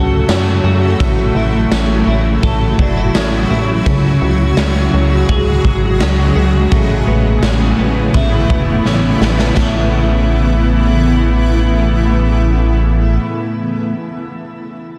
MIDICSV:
0, 0, Header, 1, 5, 480
1, 0, Start_track
1, 0, Key_signature, 3, "major"
1, 0, Tempo, 714286
1, 675, Time_signature, 4, 2, 24, 8
1, 10071, End_track
2, 0, Start_track
2, 0, Title_t, "Clean electric guitar"
2, 0, Program_c, 0, 27
2, 0, Note_on_c, 0, 54, 75
2, 0, Note_on_c, 0, 61, 62
2, 0, Note_on_c, 0, 66, 64
2, 0, Note_on_c, 0, 69, 70
2, 189, Note_off_c, 0, 61, 0
2, 192, Note_on_c, 0, 61, 62
2, 432, Note_off_c, 0, 66, 0
2, 434, Note_on_c, 0, 66, 65
2, 674, Note_on_c, 0, 45, 80
2, 913, Note_off_c, 0, 66, 0
2, 916, Note_on_c, 0, 64, 56
2, 936, Note_off_c, 0, 54, 0
2, 1153, Note_off_c, 0, 61, 0
2, 1155, Note_on_c, 0, 61, 61
2, 1389, Note_off_c, 0, 64, 0
2, 1397, Note_on_c, 0, 64, 59
2, 1632, Note_off_c, 0, 69, 0
2, 1635, Note_on_c, 0, 69, 72
2, 1872, Note_off_c, 0, 64, 0
2, 1875, Note_on_c, 0, 62, 58
2, 1998, Note_off_c, 0, 62, 0
2, 1998, Note_on_c, 0, 64, 58
2, 2109, Note_off_c, 0, 61, 0
2, 2112, Note_on_c, 0, 61, 62
2, 2345, Note_off_c, 0, 64, 0
2, 2353, Note_on_c, 0, 64, 62
2, 2593, Note_off_c, 0, 45, 0
2, 2596, Note_on_c, 0, 49, 87
2, 2642, Note_off_c, 0, 64, 0
2, 2643, Note_off_c, 0, 69, 0
2, 2833, Note_on_c, 0, 66, 56
2, 3070, Note_off_c, 0, 61, 0
2, 3073, Note_on_c, 0, 61, 64
2, 3306, Note_off_c, 0, 66, 0
2, 3314, Note_on_c, 0, 66, 58
2, 3556, Note_on_c, 0, 68, 77
2, 3788, Note_off_c, 0, 66, 0
2, 3796, Note_on_c, 0, 66, 57
2, 4031, Note_off_c, 0, 61, 0
2, 4034, Note_on_c, 0, 61, 61
2, 4265, Note_off_c, 0, 66, 0
2, 4273, Note_on_c, 0, 66, 61
2, 4510, Note_off_c, 0, 49, 0
2, 4512, Note_on_c, 0, 45, 89
2, 4562, Note_off_c, 0, 66, 0
2, 4563, Note_off_c, 0, 68, 0
2, 4753, Note_on_c, 0, 59, 62
2, 4773, Note_off_c, 0, 61, 0
2, 4994, Note_on_c, 0, 61, 64
2, 5231, Note_off_c, 0, 59, 0
2, 5233, Note_on_c, 0, 59, 61
2, 5475, Note_on_c, 0, 64, 72
2, 5710, Note_off_c, 0, 59, 0
2, 5712, Note_on_c, 0, 59, 60
2, 5951, Note_off_c, 0, 61, 0
2, 5954, Note_on_c, 0, 61, 66
2, 6189, Note_off_c, 0, 59, 0
2, 6192, Note_on_c, 0, 59, 59
2, 6405, Note_off_c, 0, 45, 0
2, 6413, Note_on_c, 0, 45, 81
2, 6433, Note_on_c, 0, 57, 85
2, 6447, Note_off_c, 0, 61, 0
2, 6449, Note_on_c, 0, 61, 79
2, 6462, Note_off_c, 0, 59, 0
2, 6465, Note_on_c, 0, 59, 93
2, 6476, Note_off_c, 0, 64, 0
2, 6478, Note_on_c, 0, 64, 89
2, 9352, Note_off_c, 0, 45, 0
2, 9362, Note_off_c, 0, 57, 0
2, 9370, Note_off_c, 0, 61, 0
2, 9378, Note_off_c, 0, 59, 0
2, 9384, Note_off_c, 0, 64, 0
2, 10071, End_track
3, 0, Start_track
3, 0, Title_t, "Ambient pad"
3, 0, Program_c, 1, 92
3, 0, Note_on_c, 1, 49, 83
3, 0, Note_on_c, 1, 54, 71
3, 0, Note_on_c, 1, 57, 67
3, 0, Note_on_c, 1, 66, 62
3, 0, Note_on_c, 1, 69, 87
3, 650, Note_off_c, 1, 54, 0
3, 653, Note_off_c, 1, 69, 0
3, 654, Note_off_c, 1, 66, 0
3, 669, Note_on_c, 1, 64, 71
3, 670, Note_on_c, 1, 66, 80
3, 672, Note_on_c, 1, 54, 68
3, 2566, Note_off_c, 1, 57, 0
3, 2569, Note_off_c, 1, 49, 0
3, 2573, Note_off_c, 1, 64, 0
3, 2588, Note_on_c, 1, 49, 79
3, 2588, Note_on_c, 1, 68, 85
3, 2589, Note_on_c, 1, 56, 70
3, 4486, Note_off_c, 1, 66, 0
3, 4487, Note_off_c, 1, 54, 0
3, 4492, Note_off_c, 1, 49, 0
3, 4492, Note_off_c, 1, 68, 0
3, 4493, Note_off_c, 1, 56, 0
3, 4511, Note_on_c, 1, 52, 66
3, 4511, Note_on_c, 1, 57, 70
3, 4512, Note_on_c, 1, 59, 77
3, 4512, Note_on_c, 1, 64, 86
3, 4514, Note_on_c, 1, 49, 77
3, 6414, Note_off_c, 1, 52, 0
3, 6414, Note_off_c, 1, 57, 0
3, 6414, Note_off_c, 1, 59, 0
3, 6414, Note_off_c, 1, 64, 0
3, 6415, Note_off_c, 1, 49, 0
3, 6436, Note_on_c, 1, 57, 73
3, 6437, Note_on_c, 1, 64, 78
3, 6438, Note_on_c, 1, 49, 73
3, 6438, Note_on_c, 1, 52, 73
3, 6439, Note_on_c, 1, 59, 66
3, 8866, Note_off_c, 1, 57, 0
3, 8866, Note_off_c, 1, 64, 0
3, 8867, Note_off_c, 1, 49, 0
3, 8867, Note_off_c, 1, 52, 0
3, 8868, Note_off_c, 1, 59, 0
3, 10071, End_track
4, 0, Start_track
4, 0, Title_t, "Analog synth bass"
4, 0, Program_c, 2, 38
4, 0, Note_on_c, 2, 37, 80
4, 165, Note_off_c, 2, 37, 0
4, 193, Note_on_c, 2, 42, 110
4, 405, Note_off_c, 2, 42, 0
4, 428, Note_on_c, 2, 42, 99
4, 642, Note_off_c, 2, 42, 0
4, 673, Note_on_c, 2, 33, 105
4, 885, Note_off_c, 2, 33, 0
4, 906, Note_on_c, 2, 33, 95
4, 1121, Note_off_c, 2, 33, 0
4, 1152, Note_on_c, 2, 33, 101
4, 1364, Note_off_c, 2, 33, 0
4, 1391, Note_on_c, 2, 33, 96
4, 1604, Note_off_c, 2, 33, 0
4, 1634, Note_on_c, 2, 33, 102
4, 1846, Note_off_c, 2, 33, 0
4, 1874, Note_on_c, 2, 30, 105
4, 2085, Note_off_c, 2, 30, 0
4, 2116, Note_on_c, 2, 33, 104
4, 2327, Note_off_c, 2, 33, 0
4, 2355, Note_on_c, 2, 33, 93
4, 2566, Note_off_c, 2, 33, 0
4, 2595, Note_on_c, 2, 37, 96
4, 2806, Note_off_c, 2, 37, 0
4, 2834, Note_on_c, 2, 37, 106
4, 3045, Note_off_c, 2, 37, 0
4, 3074, Note_on_c, 2, 37, 100
4, 3285, Note_off_c, 2, 37, 0
4, 3316, Note_on_c, 2, 37, 96
4, 3527, Note_off_c, 2, 37, 0
4, 3554, Note_on_c, 2, 37, 94
4, 3766, Note_off_c, 2, 37, 0
4, 3793, Note_on_c, 2, 32, 85
4, 4033, Note_on_c, 2, 37, 102
4, 4043, Note_off_c, 2, 32, 0
4, 4245, Note_off_c, 2, 37, 0
4, 4272, Note_on_c, 2, 37, 95
4, 4484, Note_off_c, 2, 37, 0
4, 4513, Note_on_c, 2, 33, 103
4, 4725, Note_off_c, 2, 33, 0
4, 4753, Note_on_c, 2, 33, 94
4, 4965, Note_off_c, 2, 33, 0
4, 4989, Note_on_c, 2, 33, 120
4, 5203, Note_off_c, 2, 33, 0
4, 5234, Note_on_c, 2, 33, 96
4, 5445, Note_off_c, 2, 33, 0
4, 5471, Note_on_c, 2, 33, 91
4, 5684, Note_off_c, 2, 33, 0
4, 5710, Note_on_c, 2, 28, 80
4, 5923, Note_off_c, 2, 28, 0
4, 5947, Note_on_c, 2, 33, 99
4, 6162, Note_off_c, 2, 33, 0
4, 6188, Note_on_c, 2, 33, 103
4, 6402, Note_off_c, 2, 33, 0
4, 6429, Note_on_c, 2, 33, 98
4, 8863, Note_off_c, 2, 33, 0
4, 10071, End_track
5, 0, Start_track
5, 0, Title_t, "Drums"
5, 193, Note_on_c, 9, 51, 61
5, 194, Note_on_c, 9, 38, 118
5, 194, Note_on_c, 9, 54, 78
5, 260, Note_off_c, 9, 51, 0
5, 261, Note_off_c, 9, 54, 0
5, 262, Note_off_c, 9, 38, 0
5, 673, Note_on_c, 9, 36, 116
5, 674, Note_on_c, 9, 51, 70
5, 741, Note_off_c, 9, 36, 0
5, 741, Note_off_c, 9, 51, 0
5, 1153, Note_on_c, 9, 38, 108
5, 1154, Note_on_c, 9, 51, 59
5, 1155, Note_on_c, 9, 54, 60
5, 1220, Note_off_c, 9, 38, 0
5, 1221, Note_off_c, 9, 51, 0
5, 1222, Note_off_c, 9, 54, 0
5, 1633, Note_on_c, 9, 51, 57
5, 1635, Note_on_c, 9, 36, 86
5, 1700, Note_off_c, 9, 51, 0
5, 1702, Note_off_c, 9, 36, 0
5, 1875, Note_on_c, 9, 36, 102
5, 1942, Note_off_c, 9, 36, 0
5, 2115, Note_on_c, 9, 51, 63
5, 2116, Note_on_c, 9, 38, 114
5, 2116, Note_on_c, 9, 54, 67
5, 2182, Note_off_c, 9, 51, 0
5, 2183, Note_off_c, 9, 54, 0
5, 2184, Note_off_c, 9, 38, 0
5, 2595, Note_on_c, 9, 36, 97
5, 2595, Note_on_c, 9, 51, 71
5, 2662, Note_off_c, 9, 51, 0
5, 2663, Note_off_c, 9, 36, 0
5, 3072, Note_on_c, 9, 38, 108
5, 3073, Note_on_c, 9, 51, 62
5, 3074, Note_on_c, 9, 54, 67
5, 3139, Note_off_c, 9, 38, 0
5, 3140, Note_off_c, 9, 51, 0
5, 3141, Note_off_c, 9, 54, 0
5, 3553, Note_on_c, 9, 51, 55
5, 3556, Note_on_c, 9, 36, 89
5, 3620, Note_off_c, 9, 51, 0
5, 3623, Note_off_c, 9, 36, 0
5, 3795, Note_on_c, 9, 36, 99
5, 3862, Note_off_c, 9, 36, 0
5, 4034, Note_on_c, 9, 51, 67
5, 4036, Note_on_c, 9, 38, 118
5, 4036, Note_on_c, 9, 54, 67
5, 4101, Note_off_c, 9, 51, 0
5, 4103, Note_off_c, 9, 38, 0
5, 4103, Note_off_c, 9, 54, 0
5, 4513, Note_on_c, 9, 51, 68
5, 4515, Note_on_c, 9, 36, 102
5, 4580, Note_off_c, 9, 51, 0
5, 4582, Note_off_c, 9, 36, 0
5, 4991, Note_on_c, 9, 38, 110
5, 4992, Note_on_c, 9, 51, 59
5, 4993, Note_on_c, 9, 54, 62
5, 5058, Note_off_c, 9, 38, 0
5, 5059, Note_off_c, 9, 51, 0
5, 5060, Note_off_c, 9, 54, 0
5, 5471, Note_on_c, 9, 51, 61
5, 5473, Note_on_c, 9, 36, 87
5, 5538, Note_off_c, 9, 51, 0
5, 5540, Note_off_c, 9, 36, 0
5, 5712, Note_on_c, 9, 36, 101
5, 5780, Note_off_c, 9, 36, 0
5, 5952, Note_on_c, 9, 38, 60
5, 6019, Note_off_c, 9, 38, 0
5, 6194, Note_on_c, 9, 38, 84
5, 6261, Note_off_c, 9, 38, 0
5, 6310, Note_on_c, 9, 38, 88
5, 6377, Note_off_c, 9, 38, 0
5, 6430, Note_on_c, 9, 38, 99
5, 6430, Note_on_c, 9, 55, 87
5, 6431, Note_on_c, 9, 36, 98
5, 6497, Note_off_c, 9, 38, 0
5, 6497, Note_off_c, 9, 55, 0
5, 6498, Note_off_c, 9, 36, 0
5, 10071, End_track
0, 0, End_of_file